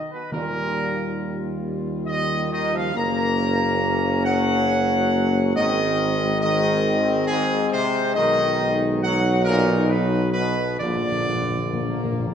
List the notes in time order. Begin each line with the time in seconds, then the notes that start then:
Already playing: D#3 D#4
0.12 B2 B4
0.32 D#2 A#2 D#3 G3 F4 A#4
2.06 D#3 D#5
2.51 D#3 D#5
2.73 F3 F5
2.94 F#1 A#3 C#4 A#5
4.24 F#3 F#5
5.54 G#1 D#3 G#3 C4 D#5
6.41 D#3 D#5
7.27 G#2 G#4
7.72 C3 C5
8.14 B1 D#3 D#4 D#5
9.01 F#3 F#5
9.45 A#2 A#4
9.90 B2 B4
10.33 B2 B4
10.78 A#1 A#2 D3 A#3 F4 D5
10.88 A#2
10.96 A#2
11.04 A#2
11.12 A#2
11.19 A#2
11.27 A#2
11.34 A#2
11.42 A#2
11.50 A#2
11.57 A#2
11.65 A#2
11.71 A#2 A#3
11.80 A#2
11.88 A#2
11.97 A#2
12.04 A#2
12.12 A#2
12.20 A#2
12.27 A#2